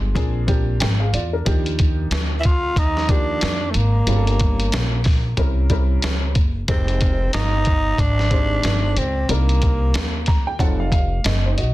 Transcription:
0.00 0.13 G1 loud
0.00 0.16 G#3 medium
0.15 0.78 A#1 loud
0.15 0.43 F3 medium
0.15 0.43 A#3 medium
0.15 0.43 C4 medium
0.15 0.43 D4 medium
0.15 0.44 G#4 medium
0.15 kick medium
0.15 closed hi-hat medium
0.47 1.12 F3 medium
0.47 1.12 A#3 medium
0.47 1.12 C4 medium
0.47 0.81 D4 medium
0.47 0.81 G4 loud
0.47 kick loud
0.47 closed hi-hat medium
0.80 1.12 G#1 medium
0.80 1.00 A#4 medium
0.80 0.99 G5 medium
0.80 snare loud
0.80 closed hi-hat loud
1.00 1.13 G#4 medium
1.00 1.13 F5 medium
1.13 1.44 E2 medium
1.13 1.33 F4 medium
1.13 1.32 D5 medium
1.13 closed hi-hat medium
1.33 1.44 D4 medium
1.33 1.64 A#4 medium
1.45 2.09 D#2 loud
1.45 2.34 F3 medium
1.45 2.34 A#3 medium
1.45 2.34 D4 medium
1.45 2.34 D#4 medium
1.45 2.34 G4 loud
1.45 kick medium
1.45 closed hi-hat medium
1.66 closed hi-hat soft
1.79 kick medium
1.79 closed hi-hat medium
2.11 2.73 D2 medium
2.11 snare loud
2.11 closed hi-hat medium
2.40 2.48 E4 medium
2.40 closed hi-hat medium
2.45 2.80 F4 medium
2.45 kick medium
2.76 3.39 D#2 medium
2.76 3.12 D#4 loud
2.76 kick medium
2.76 closed hi-hat medium
2.97 snare soft
3.09 3.74 D#3 medium
3.09 3.73 F3 medium
3.09 3.74 A#3 medium
3.09 3.74 D4 medium
3.09 3.72 D4 medium
3.09 3.74 G4 medium
3.09 kick medium
3.09 closed hi-hat medium
3.41 3.73 F2 medium
3.41 snare loud
3.41 closed hi-hat loud
3.70 3.78 A3 medium
3.70 closed hi-hat medium
3.75 4.06 G#1 loud
3.75 5.06 A#3 medium
4.07 4.69 G1 medium
4.07 4.95 G3 medium
4.07 4.95 A#3 medium
4.07 4.96 C#4 medium
4.07 4.96 F4 medium
4.07 4.16 G4 medium
4.07 closed hi-hat medium
4.15 4.99 A4 medium
4.27 closed hi-hat soft
4.40 kick medium
4.40 closed hi-hat medium
4.60 closed hi-hat medium
4.72 5.34 A#1 medium
4.72 snare loud
4.72 closed hi-hat medium
5.04 kick medium
5.04 snare soft
5.04 open hi-hat soft
5.37 5.99 C2 medium
5.37 5.65 G3 medium
5.37 5.65 C4 medium
5.37 5.66 C#4 medium
5.37 5.66 E4 medium
5.37 5.66 A#4 medium
5.37 kick medium
5.37 closed hi-hat medium
5.70 6.34 G3 medium
5.70 6.35 C4 medium
5.70 6.35 C#4 medium
5.70 6.35 E4 medium
5.70 6.35 A#4 medium
5.70 kick medium
5.70 closed hi-hat medium
6.02 6.34 C#2 medium
6.02 snare loud
6.02 closed hi-hat loud
6.35 6.67 F#1 medium
6.35 kick medium
6.35 closed hi-hat medium
6.68 7.30 F1 loud
6.68 7.56 G#3 medium
6.68 7.56 C4 medium
6.68 7.30 C4 medium
6.68 7.56 D#4 medium
6.68 7.56 G4 medium
6.68 7.57 A#4 medium
6.68 kick loud
6.68 closed hi-hat loud
6.88 closed hi-hat soft
7.01 kick medium
7.01 closed hi-hat medium
7.33 7.96 G1 medium
7.33 8.02 D#4 loud
7.33 snare loud
7.33 closed hi-hat medium
7.65 kick medium
7.65 closed hi-hat medium
7.98 8.60 G#1 medium
7.98 9.00 D4 loud
7.98 kick medium
7.98 closed hi-hat medium
8.19 snare soft
8.31 8.96 D#3 medium
8.31 8.96 G#3 medium
8.31 8.96 C4 medium
8.31 8.96 G4 medium
8.31 8.96 C5 medium
8.31 kick medium
8.31 closed hi-hat medium
8.63 8.95 G1 medium
8.63 snare loud
8.63 closed hi-hat loud
8.97 9.27 C#2 medium
8.97 9.32 C4 medium
8.97 closed hi-hat medium
9.29 9.91 C2 loud
9.29 10.17 G3 medium
9.29 10.60 A#3 medium
9.29 10.17 C4 medium
9.29 10.17 D4 medium
9.29 10.17 D#4 medium
9.29 10.18 A#4 medium
9.29 closed hi-hat medium
9.49 closed hi-hat soft
9.62 kick medium
9.62 closed hi-hat medium
9.94 10.56 D#2 medium
9.94 snare loud
9.94 closed hi-hat medium
10.26 10.45 A#5 medium
10.26 kick loud
10.26 snare soft
10.26 closed hi-hat medium
10.47 10.59 G5 medium
10.59 11.21 F1 loud
10.59 10.87 F#3 medium
10.59 10.87 C4 medium
10.59 10.87 D#4 medium
10.59 10.87 F4 medium
10.59 10.87 A4 loud
10.59 10.78 F#5 medium
10.59 kick medium
10.59 closed hi-hat medium
10.80 10.92 F5 medium
10.92 11.23 F5 medium
10.92 kick medium
10.92 closed hi-hat medium
11.24 11.59 F#1 medium
11.24 11.56 D#5 medium
11.24 snare loud
11.24 closed hi-hat loud
11.45 11.58 D#4 soft
11.45 11.57 C5 medium
11.57 11.74 B1 medium
11.57 11.74 F#4 medium
11.57 11.74 D#5 medium
11.57 closed hi-hat medium

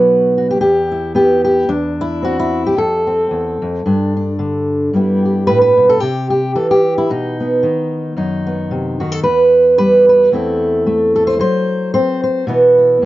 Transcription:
0.00 0.58 B2 medium
0.00 0.58 F#3 medium
0.00 0.58 B3 medium
0.00 0.58 D#4 soft
0.00 0.36 F#4 medium
0.00 0.58 B4 soft
0.37 0.50 F#4 soft
0.50 0.59 G4 medium
0.61 1.67 E2 medium
0.61 1.15 G4 medium
0.92 1.66 E4 soft
1.15 1.66 B3 medium
1.15 1.43 G4 medium
1.45 1.69 G4 medium
1.68 2.76 E2 medium
1.68 2.53 D4 medium
2.01 2.38 E4 medium
2.22 2.74 C4 soft
2.22 2.66 F#4 medium
2.40 2.78 E4 medium
2.67 2.78 G4 medium
2.77 3.30 F2 medium
2.77 4.94 A4 medium
3.07 3.82 C4 soft
3.31 3.61 E2 medium
3.62 3.85 F2 medium
3.85 4.90 G2 medium
3.85 4.15 D4 soft
4.17 4.91 D4 soft
4.39 4.93 D3 medium
4.93 5.98 G2 soft
4.93 5.99 G3 soft
4.93 5.99 B3 soft
4.93 6.00 E4 soft
4.93 5.24 G4 soft
5.25 5.46 G4 soft
5.47 5.77 A2 medium
5.47 5.60 B4 medium
5.61 5.89 B4 medium
5.77 6.01 B2 medium
5.89 6.00 A4 medium
6.00 6.56 C3 medium
6.00 6.29 G4 medium
6.30 6.55 G4 medium
6.55 7.06 E3 medium
6.55 6.70 A4 medium
6.71 6.97 G4 medium
6.98 7.09 E4 medium
7.10 7.63 B2 medium
7.10 8.16 D#4 medium
7.40 8.46 B3 soft
7.63 9.00 D#3 medium
8.17 9.22 F#2 medium
8.17 9.22 D#4 soft
8.47 9.22 B3 soft
8.71 9.01 C3 soft
9.00 9.25 D#3 medium
9.00 9.12 F#4 medium
9.12 9.23 A4 medium
9.23 10.31 E2 medium
9.23 9.77 B4 medium
9.78 10.29 G3 medium
9.78 10.08 B4 loud
10.09 10.33 B4 medium
10.32 11.40 E2 medium
10.32 10.85 A3 soft
10.32 11.38 C4 soft
10.32 11.38 E4 soft
10.32 11.14 A4 soft
10.86 11.37 A3 medium
11.15 11.26 A4 medium
11.27 11.39 C5 medium
11.39 12.44 F#3 medium
11.39 11.93 C5 medium
11.94 12.45 C4 medium
11.94 12.23 C5 medium
12.24 12.47 C5 medium
12.47 13.00 B2 medium
12.47 13.05 E3 soft
12.47 13.05 B3 soft
12.47 12.77 E4 soft
12.78 13.05 E4 soft
13.02 13.05 A2 medium

